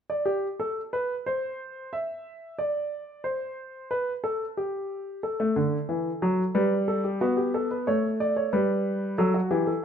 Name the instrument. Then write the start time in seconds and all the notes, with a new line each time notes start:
grand piano
0.10 D5
0.26 G4
0.60 A4
0.93 B4
1.26 C5
1.93 E5
2.59 D5
3.24 C5
3.91 B4
4.24 A4
4.57 G4
5.23 A4
5.40 A3
5.56 D3
5.89 E3
6.22 F#3
6.55 G3 B4
6.88 A4
7.04 G4
7.21 B3 F#4
7.37 G4
7.54 A4
7.71 B4
7.87 A3 C#5
8.20 D5
8.36 C#5
8.53 G3 B4
9.18 F#3 A4
9.34 F#4
9.51 E3 G4
9.67 A4